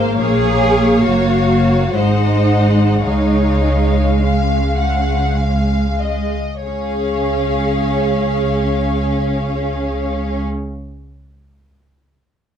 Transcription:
Already playing: double bass section G#1, viola section A#3, violin section C5 F5
0.20 double bass section A#1, cello section G#4, violin section C#5 F5
1.04 double bass section F#1, cello section F#4
1.96 double bass section G#1, viola section G#3, cello section D#4, violin section C5 F#5
3.03 double bass section C#2, cello section D#4, violin section C#5 F5
4.21 cello section C#4, violin section F5
4.80 violin section F#5
5.40 violin section F5
6.01 violin section D#5
6.63 double bass section C#2, cello section C#4, viola section G#4, violin section C#5 F5

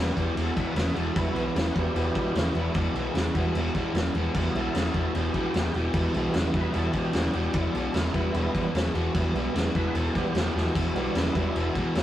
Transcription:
Already playing: distorted electric guitar E2 C#3, tonewheel organ E3 G3 B3
0.15 picked electric bass E1, distorted electric guitar E2 B2, tonewheel organ G4, kick, crash
0.36 picked electric bass E1, distorted electric guitar E2 B2, tonewheel organ A4, crash
0.56 picked electric bass A1, distorted electric guitar E2 B2, tonewheel organ B4, kick, crash
0.75 picked electric bass E1, distorted electric guitar E2 C#3, snare, crash
0.95 picked electric bass E1, distorted electric guitar E2 B2, crash
0.99 tonewheel organ A4
1.15 picked electric bass E1, distorted electric guitar E2 B2, tonewheel organ E3 G3 B3 E4, kick, crash
1.35 picked electric bass B1, distorted electric guitar E2 B2, crash
1.54 picked electric bass E1, distorted electric guitar E2 C#3, snare, crash
1.72 picked electric bass E1, distorted electric guitar E2 B2, tonewheel organ F#4, kick, crash
1.78 tonewheel organ G4
1.94 picked electric bass E1, distorted electric guitar E2 B2, crash
2.14 picked electric bass A1, distorted electric guitar E2 B2, kick, crash
2.35 picked electric bass E1, distorted electric guitar E2 C#3, snare, crash
2.54 picked electric bass E1, distorted electric guitar E2 B2, tonewheel organ E4, crash
2.74 picked electric bass E1, distorted electric guitar E2 B2, tonewheel organ D4, kick, crash
2.95 picked electric bass B1, distorted electric guitar E2 B2, tonewheel organ B3, crash
3.10 picked electric bass E1, distorted electric guitar E2, tonewheel organ A#3
3.15 distorted electric guitar C#3, tonewheel organ B3, snare, crash
3.34 picked electric bass E1, distorted electric guitar E2 B2, tonewheel organ E3 G3 B3, kick, crash
3.54 picked electric bass E1, distorted electric guitar E2 B2, crash
3.75 picked electric bass A1, distorted electric guitar E2 B2, kick, crash
3.93 picked electric bass E1, distorted electric guitar E2 C#3, tonewheel organ E3 G3 B3, snare, crash
4.14 picked electric bass E1, distorted electric guitar E2 B2, crash
4.33 picked electric bass E1, distorted electric guitar E2 B2, tonewheel organ E3 G3 B3, kick, crash
4.51 picked electric bass B1, tonewheel organ G#4
4.55 distorted electric guitar E2 B2, tonewheel organ E4 A4, crash
4.75 picked electric bass E1, distorted electric guitar E2 C#3, tonewheel organ E4 A4, snare, crash
4.94 picked electric bass E1, distorted electric guitar E2 B2, tonewheel organ E4 A4, kick, crash
5.15 picked electric bass E1, distorted electric guitar E2 B2, tonewheel organ B3 G4, crash
5.34 picked electric bass A1, distorted electric guitar E2 B2, tonewheel organ B3 G4, kick, crash
5.54 picked electric bass E1, distorted electric guitar E2 C#3, tonewheel organ B3 G4, snare, crash
5.71 picked electric bass E1, distorted electric guitar E2, tonewheel organ F#4, crash
5.76 distorted electric guitar B2, tonewheel organ G4
5.93 picked electric bass E1, distorted electric guitar E2 B2, tonewheel organ E3 G3 B3, kick, crash
6.14 picked electric bass B1, distorted electric guitar E2 B2, crash
6.34 picked electric bass E1, distorted electric guitar E2 C#3, snare, crash
6.54 picked electric bass E1, distorted electric guitar E2 B2, tonewheel organ B4, kick, crash
6.73 picked electric bass E1, distorted electric guitar E2 B2, tonewheel organ E3 G3 B3 A4, crash
6.91 picked electric bass A1, distorted electric guitar E2 B2, tonewheel organ F#4, kick, crash
6.96 tonewheel organ G4
7.13 picked electric bass E1, distorted electric guitar E2 C#3, snare, crash
7.33 picked electric bass E1, distorted electric guitar E2 B2, crash
7.53 picked electric bass E1, distorted electric guitar E2 B2, tonewheel organ E4, kick, crash
7.74 picked electric bass B1, distorted electric guitar E2 B2, tonewheel organ D4, crash
7.94 picked electric bass E1, distorted electric guitar E2 C#3, tonewheel organ E4, snare, crash
8.12 picked electric bass E1, distorted electric guitar E2 B2, tonewheel organ E3 G3 B3 D#4, kick, crash
8.16 tonewheel organ E4
8.34 picked electric bass E1, distorted electric guitar E2 B2, crash
8.54 picked electric bass A1, distorted electric guitar E2 B2, kick, crash
8.74 picked electric bass E1, distorted electric guitar E2 C#3, snare, crash
8.94 picked electric bass E1, distorted electric guitar E2 B2, crash
9.13 picked electric bass E1, distorted electric guitar E2 B2, tonewheel organ E3 G3 B3, kick, crash
9.34 picked electric bass B1, distorted electric guitar E2 B2, crash
9.54 picked electric bass E1, distorted electric guitar E2 C#3, snare, crash
9.75 picked electric bass E1, distorted electric guitar E2 B2, tonewheel organ B4, kick, crash
9.94 picked electric bass E1, distorted electric guitar E2 B2, tonewheel organ A4, crash
10.12 picked electric bass A1, distorted electric guitar E2, tonewheel organ E3 G3 B3 F#4 G4, kick, crash
10.16 distorted electric guitar B2
10.34 picked electric bass E1, distorted electric guitar E2 C#3, snare, crash
10.54 picked electric bass E1, distorted electric guitar E2 B2, snare
10.75 picked electric bass E1, distorted electric guitar E2 B2, tonewheel organ E4, kick, crash
10.93 picked electric bass B1, distorted electric guitar E2 B2, tonewheel organ E3 G3 B3 D4, crash
11.14 picked electric bass E1, distorted electric guitar E2 C#3, tonewheel organ E4, snare, crash
11.32 picked electric bass E1, tonewheel organ D#4, kick, crash
11.36 distorted electric guitar E2 B2, tonewheel organ E4
11.55 picked electric bass E1, distorted electric guitar E2 B2, crash
11.75 picked electric bass A1, distorted electric guitar E2 B2, kick, crash
11.94 picked electric bass E1, distorted electric guitar E2 C#3, tonewheel organ E3 G3 B3, snare, crash

